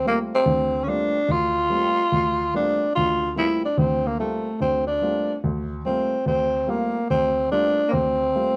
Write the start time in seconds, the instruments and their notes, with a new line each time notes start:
0.05 grand piano G3 A3 A#3 C4 F4, tenor saxophone A#3
0.35 tenor saxophone C4
0.46 grand piano D2 D3
0.84 grand piano G3 A3 A#3 C4 F4, tenor saxophone C#4
0.89 tenor saxophone D4
1.29 grand piano D2, tenor saxophone F4
1.70 grand piano G3 A3 A#3 C4 F4
2.12 grand piano D2
2.54 grand piano G3 A3 A#3 C4 F4, tenor saxophone D4
2.95 grand piano D2 D3, tenor saxophone F4
3.36 grand piano G3 A3 A#3 C4 F4, tenor saxophone E4
3.65 tenor saxophone D4
3.78 grand piano D2 D3, tenor saxophone C4
4.06 tenor saxophone A#3
4.18 grand piano G3 A3 A#3 C4 F4, tenor saxophone A3
4.61 grand piano D2 D3, tenor saxophone C4
4.87 tenor saxophone D4
5.01 grand piano G3 A3 A#3 C4 F4
5.44 grand piano D2
5.85 grand piano G3 A3 A#3 C4 F4, tenor saxophone C4
6.26 grand piano D2, tenor saxophone C4
6.67 grand piano G3 A3 A#3 C4 F4, tenor saxophone A#3
7.10 grand piano D2, tenor saxophone C4
7.51 grand piano G3 A3 A#3 C4 F4, tenor saxophone D4
7.88 tenor saxophone A#3 C4
7.93 grand piano D2
8.35 grand piano G3 A3 A#3 C4 F4